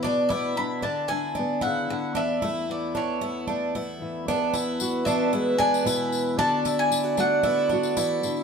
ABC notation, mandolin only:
X:1
M:4/4
L:1/16
Q:1/4=113
K:Emix
V:1 name="Mandolin"
d2 d2 b2 a2 g4 f2 f2 | e4 d2 c4 z6 | z6 e4 g6 | a3 g3 f8 z2 |]